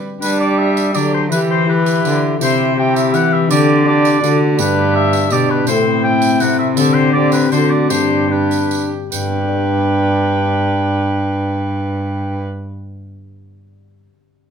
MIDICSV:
0, 0, Header, 1, 7, 480
1, 0, Start_track
1, 0, Key_signature, 1, "major"
1, 0, Tempo, 365631
1, 281, Time_signature, 3, 2, 24, 8
1, 9879, Tempo, 398406
1, 11319, Tempo, 418994
1, 17945, End_track
2, 0, Start_track
2, 0, Title_t, "Oboe"
2, 0, Program_c, 0, 68
2, 290, Note_on_c, 0, 71, 110
2, 510, Note_off_c, 0, 71, 0
2, 531, Note_on_c, 0, 74, 111
2, 768, Note_on_c, 0, 76, 121
2, 788, Note_off_c, 0, 74, 0
2, 1248, Note_on_c, 0, 74, 104
2, 1268, Note_off_c, 0, 76, 0
2, 1486, Note_off_c, 0, 74, 0
2, 1500, Note_on_c, 0, 72, 97
2, 1604, Note_off_c, 0, 72, 0
2, 1731, Note_on_c, 0, 71, 105
2, 1837, Note_off_c, 0, 71, 0
2, 1978, Note_on_c, 0, 72, 108
2, 2206, Note_off_c, 0, 72, 0
2, 2223, Note_on_c, 0, 71, 103
2, 2919, Note_off_c, 0, 71, 0
2, 3191, Note_on_c, 0, 72, 113
2, 3623, Note_off_c, 0, 72, 0
2, 3659, Note_on_c, 0, 79, 114
2, 3881, Note_off_c, 0, 79, 0
2, 3889, Note_on_c, 0, 76, 106
2, 4133, Note_on_c, 0, 78, 126
2, 4152, Note_off_c, 0, 76, 0
2, 4373, Note_on_c, 0, 76, 109
2, 4393, Note_off_c, 0, 78, 0
2, 4598, Note_off_c, 0, 76, 0
2, 4606, Note_on_c, 0, 74, 114
2, 5071, Note_off_c, 0, 74, 0
2, 5095, Note_on_c, 0, 74, 113
2, 5787, Note_off_c, 0, 74, 0
2, 6037, Note_on_c, 0, 71, 106
2, 6478, Note_off_c, 0, 71, 0
2, 6506, Note_on_c, 0, 76, 127
2, 6989, Note_on_c, 0, 74, 112
2, 7009, Note_off_c, 0, 76, 0
2, 7226, Note_on_c, 0, 71, 95
2, 7246, Note_off_c, 0, 74, 0
2, 7441, Note_off_c, 0, 71, 0
2, 7449, Note_on_c, 0, 72, 104
2, 7922, Note_off_c, 0, 72, 0
2, 7932, Note_on_c, 0, 79, 119
2, 8414, Note_on_c, 0, 78, 111
2, 8433, Note_off_c, 0, 79, 0
2, 8646, Note_off_c, 0, 78, 0
2, 8654, Note_on_c, 0, 76, 96
2, 8763, Note_off_c, 0, 76, 0
2, 8883, Note_on_c, 0, 69, 113
2, 9110, Note_on_c, 0, 72, 107
2, 9130, Note_off_c, 0, 69, 0
2, 9348, Note_off_c, 0, 72, 0
2, 9356, Note_on_c, 0, 74, 113
2, 9610, Note_off_c, 0, 74, 0
2, 9621, Note_on_c, 0, 71, 96
2, 9864, Note_off_c, 0, 71, 0
2, 9872, Note_on_c, 0, 72, 99
2, 10091, Note_on_c, 0, 74, 96
2, 10109, Note_off_c, 0, 72, 0
2, 10323, Note_off_c, 0, 74, 0
2, 10330, Note_on_c, 0, 72, 98
2, 10826, Note_on_c, 0, 71, 83
2, 10844, Note_off_c, 0, 72, 0
2, 11557, Note_off_c, 0, 71, 0
2, 11788, Note_on_c, 0, 79, 92
2, 15548, Note_off_c, 0, 79, 0
2, 17945, End_track
3, 0, Start_track
3, 0, Title_t, "Viola"
3, 0, Program_c, 1, 41
3, 281, Note_on_c, 1, 67, 82
3, 1191, Note_off_c, 1, 67, 0
3, 1240, Note_on_c, 1, 67, 80
3, 1712, Note_off_c, 1, 67, 0
3, 1746, Note_on_c, 1, 67, 79
3, 2205, Note_off_c, 1, 67, 0
3, 2211, Note_on_c, 1, 67, 79
3, 3147, Note_off_c, 1, 67, 0
3, 3158, Note_on_c, 1, 67, 78
3, 3629, Note_off_c, 1, 67, 0
3, 3654, Note_on_c, 1, 67, 88
3, 4586, Note_off_c, 1, 67, 0
3, 4602, Note_on_c, 1, 67, 85
3, 5069, Note_off_c, 1, 67, 0
3, 5084, Note_on_c, 1, 67, 79
3, 5530, Note_off_c, 1, 67, 0
3, 5538, Note_on_c, 1, 66, 86
3, 6024, Note_on_c, 1, 67, 90
3, 6043, Note_off_c, 1, 66, 0
3, 6950, Note_off_c, 1, 67, 0
3, 6957, Note_on_c, 1, 67, 81
3, 7456, Note_on_c, 1, 64, 84
3, 7476, Note_off_c, 1, 67, 0
3, 8910, Note_on_c, 1, 67, 76
3, 8930, Note_off_c, 1, 64, 0
3, 9369, Note_off_c, 1, 67, 0
3, 9377, Note_on_c, 1, 67, 75
3, 9873, Note_on_c, 1, 66, 76
3, 9891, Note_off_c, 1, 67, 0
3, 10331, Note_on_c, 1, 67, 76
3, 10349, Note_off_c, 1, 66, 0
3, 10810, Note_off_c, 1, 67, 0
3, 10818, Note_on_c, 1, 67, 74
3, 11538, Note_off_c, 1, 67, 0
3, 11799, Note_on_c, 1, 71, 74
3, 15554, Note_off_c, 1, 71, 0
3, 17945, End_track
4, 0, Start_track
4, 0, Title_t, "Harp"
4, 0, Program_c, 2, 46
4, 0, Note_on_c, 2, 62, 39
4, 0, Note_on_c, 2, 71, 40
4, 0, Note_on_c, 2, 79, 46
4, 223, Note_off_c, 2, 62, 0
4, 239, Note_on_c, 2, 62, 62
4, 1242, Note_on_c, 2, 50, 64
4, 1683, Note_on_c, 2, 64, 62
4, 1693, Note_on_c, 2, 67, 62
4, 1718, Note_on_c, 2, 52, 71
4, 1721, Note_off_c, 2, 62, 0
4, 1742, Note_off_c, 2, 50, 0
4, 2163, Note_off_c, 2, 64, 0
4, 2179, Note_on_c, 2, 64, 59
4, 2181, Note_off_c, 2, 67, 0
4, 2197, Note_on_c, 2, 67, 58
4, 2685, Note_on_c, 2, 50, 70
4, 3119, Note_off_c, 2, 64, 0
4, 3134, Note_on_c, 2, 64, 70
4, 3136, Note_off_c, 2, 67, 0
4, 3152, Note_on_c, 2, 67, 70
4, 3165, Note_on_c, 2, 48, 72
4, 3170, Note_off_c, 2, 79, 0
4, 3179, Note_off_c, 2, 52, 0
4, 3179, Note_off_c, 2, 71, 0
4, 3182, Note_off_c, 2, 50, 0
4, 4113, Note_on_c, 2, 52, 66
4, 4560, Note_on_c, 2, 62, 67
4, 4563, Note_off_c, 2, 67, 0
4, 4579, Note_on_c, 2, 67, 68
4, 4594, Note_on_c, 2, 50, 78
4, 4604, Note_off_c, 2, 64, 0
4, 4614, Note_off_c, 2, 52, 0
4, 4619, Note_off_c, 2, 48, 0
4, 5013, Note_off_c, 2, 62, 0
4, 5029, Note_on_c, 2, 62, 63
4, 5031, Note_off_c, 2, 67, 0
4, 5047, Note_on_c, 2, 67, 64
4, 5498, Note_off_c, 2, 62, 0
4, 5501, Note_on_c, 2, 57, 65
4, 5514, Note_on_c, 2, 62, 68
4, 5529, Note_on_c, 2, 66, 66
4, 5531, Note_off_c, 2, 50, 0
4, 5547, Note_on_c, 2, 50, 73
4, 5558, Note_off_c, 2, 67, 0
4, 5974, Note_on_c, 2, 59, 67
4, 5978, Note_off_c, 2, 62, 0
4, 5994, Note_on_c, 2, 62, 70
4, 6011, Note_on_c, 2, 67, 64
4, 6023, Note_off_c, 2, 57, 0
4, 6030, Note_on_c, 2, 43, 77
4, 6037, Note_off_c, 2, 66, 0
4, 6046, Note_off_c, 2, 50, 0
4, 6970, Note_on_c, 2, 47, 74
4, 7390, Note_on_c, 2, 57, 66
4, 7401, Note_on_c, 2, 60, 71
4, 7414, Note_on_c, 2, 64, 68
4, 7433, Note_on_c, 2, 45, 76
4, 7452, Note_off_c, 2, 59, 0
4, 7462, Note_off_c, 2, 62, 0
4, 7470, Note_off_c, 2, 67, 0
4, 7472, Note_off_c, 2, 47, 0
4, 7480, Note_off_c, 2, 43, 0
4, 8407, Note_on_c, 2, 48, 69
4, 8808, Note_off_c, 2, 57, 0
4, 8824, Note_on_c, 2, 57, 63
4, 8825, Note_off_c, 2, 60, 0
4, 8841, Note_on_c, 2, 60, 67
4, 8863, Note_on_c, 2, 67, 66
4, 8872, Note_on_c, 2, 50, 74
4, 8891, Note_off_c, 2, 64, 0
4, 8901, Note_off_c, 2, 45, 0
4, 8911, Note_off_c, 2, 48, 0
4, 9812, Note_off_c, 2, 57, 0
4, 9828, Note_on_c, 2, 57, 59
4, 9848, Note_on_c, 2, 62, 60
4, 9860, Note_off_c, 2, 50, 0
4, 9860, Note_on_c, 2, 66, 59
4, 9876, Note_on_c, 2, 50, 63
4, 9881, Note_off_c, 2, 67, 0
4, 10294, Note_off_c, 2, 62, 0
4, 10308, Note_on_c, 2, 62, 57
4, 10328, Note_on_c, 2, 67, 60
4, 10339, Note_off_c, 2, 60, 0
4, 10340, Note_on_c, 2, 43, 68
4, 10341, Note_off_c, 2, 57, 0
4, 10356, Note_off_c, 2, 66, 0
4, 10363, Note_off_c, 2, 50, 0
4, 10777, Note_off_c, 2, 62, 0
4, 10791, Note_on_c, 2, 62, 51
4, 10799, Note_off_c, 2, 67, 0
4, 10814, Note_on_c, 2, 67, 54
4, 11773, Note_off_c, 2, 43, 0
4, 11787, Note_on_c, 2, 43, 62
4, 11871, Note_on_c, 2, 55, 65
4, 11948, Note_on_c, 2, 59, 62
4, 12020, Note_off_c, 2, 62, 0
4, 12034, Note_on_c, 2, 62, 64
4, 12100, Note_off_c, 2, 67, 0
4, 12114, Note_on_c, 2, 67, 66
4, 12194, Note_on_c, 2, 74, 70
4, 16349, Note_off_c, 2, 43, 0
4, 16391, Note_off_c, 2, 55, 0
4, 16430, Note_off_c, 2, 59, 0
4, 16473, Note_off_c, 2, 62, 0
4, 16513, Note_off_c, 2, 67, 0
4, 16553, Note_off_c, 2, 74, 0
4, 17945, End_track
5, 0, Start_track
5, 0, Title_t, "Trombone"
5, 0, Program_c, 3, 57
5, 271, Note_on_c, 3, 62, 82
5, 1186, Note_off_c, 3, 62, 0
5, 1244, Note_on_c, 3, 62, 71
5, 1709, Note_off_c, 3, 62, 0
5, 1717, Note_on_c, 3, 64, 74
5, 2183, Note_off_c, 3, 64, 0
5, 2191, Note_on_c, 3, 64, 83
5, 3137, Note_off_c, 3, 64, 0
5, 3158, Note_on_c, 3, 64, 82
5, 3629, Note_off_c, 3, 64, 0
5, 3636, Note_on_c, 3, 64, 86
5, 4600, Note_on_c, 3, 62, 79
5, 4620, Note_off_c, 3, 64, 0
5, 5060, Note_off_c, 3, 62, 0
5, 5068, Note_on_c, 3, 62, 85
5, 5540, Note_off_c, 3, 62, 0
5, 5548, Note_on_c, 3, 62, 75
5, 6017, Note_off_c, 3, 62, 0
5, 6032, Note_on_c, 3, 62, 89
5, 6967, Note_off_c, 3, 62, 0
5, 6989, Note_on_c, 3, 62, 74
5, 7476, Note_on_c, 3, 60, 88
5, 7495, Note_off_c, 3, 62, 0
5, 8535, Note_off_c, 3, 60, 0
5, 8894, Note_on_c, 3, 60, 85
5, 9347, Note_off_c, 3, 60, 0
5, 9376, Note_on_c, 3, 60, 81
5, 9865, Note_off_c, 3, 60, 0
5, 9877, Note_on_c, 3, 62, 66
5, 10327, Note_off_c, 3, 62, 0
5, 10335, Note_on_c, 3, 62, 75
5, 10811, Note_off_c, 3, 62, 0
5, 10816, Note_on_c, 3, 62, 78
5, 11538, Note_off_c, 3, 62, 0
5, 11798, Note_on_c, 3, 62, 80
5, 15553, Note_off_c, 3, 62, 0
5, 17945, End_track
6, 0, Start_track
6, 0, Title_t, "Cello"
6, 0, Program_c, 4, 42
6, 281, Note_on_c, 4, 55, 83
6, 1240, Note_on_c, 4, 54, 76
6, 1260, Note_off_c, 4, 55, 0
6, 1715, Note_on_c, 4, 52, 86
6, 1734, Note_off_c, 4, 54, 0
6, 2679, Note_off_c, 4, 52, 0
6, 2697, Note_on_c, 4, 50, 80
6, 3156, Note_off_c, 4, 50, 0
6, 3164, Note_on_c, 4, 48, 92
6, 4130, Note_on_c, 4, 52, 84
6, 4150, Note_off_c, 4, 48, 0
6, 4601, Note_on_c, 4, 50, 97
6, 4621, Note_off_c, 4, 52, 0
6, 5555, Note_off_c, 4, 50, 0
6, 5560, Note_on_c, 4, 50, 88
6, 6029, Note_on_c, 4, 43, 96
6, 6048, Note_off_c, 4, 50, 0
6, 6986, Note_on_c, 4, 47, 85
6, 7005, Note_off_c, 4, 43, 0
6, 7447, Note_off_c, 4, 47, 0
6, 7455, Note_on_c, 4, 45, 90
6, 8408, Note_on_c, 4, 48, 77
6, 8427, Note_off_c, 4, 45, 0
6, 8886, Note_on_c, 4, 50, 89
6, 8906, Note_off_c, 4, 48, 0
6, 9868, Note_off_c, 4, 50, 0
6, 9876, Note_on_c, 4, 50, 78
6, 10348, Note_on_c, 4, 43, 80
6, 10366, Note_off_c, 4, 50, 0
6, 11558, Note_off_c, 4, 43, 0
6, 11799, Note_on_c, 4, 43, 88
6, 15553, Note_off_c, 4, 43, 0
6, 17945, End_track
7, 0, Start_track
7, 0, Title_t, "Drums"
7, 290, Note_on_c, 9, 54, 86
7, 422, Note_off_c, 9, 54, 0
7, 1010, Note_on_c, 9, 54, 49
7, 1142, Note_off_c, 9, 54, 0
7, 1241, Note_on_c, 9, 54, 55
7, 1373, Note_off_c, 9, 54, 0
7, 1731, Note_on_c, 9, 54, 88
7, 1863, Note_off_c, 9, 54, 0
7, 2445, Note_on_c, 9, 54, 52
7, 2577, Note_off_c, 9, 54, 0
7, 2693, Note_on_c, 9, 54, 49
7, 2824, Note_off_c, 9, 54, 0
7, 3166, Note_on_c, 9, 54, 80
7, 3297, Note_off_c, 9, 54, 0
7, 3891, Note_on_c, 9, 54, 57
7, 4022, Note_off_c, 9, 54, 0
7, 4119, Note_on_c, 9, 54, 50
7, 4250, Note_off_c, 9, 54, 0
7, 4602, Note_on_c, 9, 54, 86
7, 4733, Note_off_c, 9, 54, 0
7, 5317, Note_on_c, 9, 54, 51
7, 5449, Note_off_c, 9, 54, 0
7, 5562, Note_on_c, 9, 54, 53
7, 5693, Note_off_c, 9, 54, 0
7, 6021, Note_on_c, 9, 54, 81
7, 6152, Note_off_c, 9, 54, 0
7, 6737, Note_on_c, 9, 54, 52
7, 6868, Note_off_c, 9, 54, 0
7, 6964, Note_on_c, 9, 54, 55
7, 7095, Note_off_c, 9, 54, 0
7, 7441, Note_on_c, 9, 54, 76
7, 7573, Note_off_c, 9, 54, 0
7, 8162, Note_on_c, 9, 54, 54
7, 8293, Note_off_c, 9, 54, 0
7, 8405, Note_on_c, 9, 54, 53
7, 8536, Note_off_c, 9, 54, 0
7, 8887, Note_on_c, 9, 54, 83
7, 9018, Note_off_c, 9, 54, 0
7, 9607, Note_on_c, 9, 54, 53
7, 9739, Note_off_c, 9, 54, 0
7, 9870, Note_on_c, 9, 54, 53
7, 9991, Note_off_c, 9, 54, 0
7, 10334, Note_on_c, 9, 54, 83
7, 10455, Note_off_c, 9, 54, 0
7, 11066, Note_on_c, 9, 54, 48
7, 11186, Note_off_c, 9, 54, 0
7, 11307, Note_on_c, 9, 54, 52
7, 11422, Note_off_c, 9, 54, 0
7, 11776, Note_on_c, 9, 54, 84
7, 11890, Note_off_c, 9, 54, 0
7, 17945, End_track
0, 0, End_of_file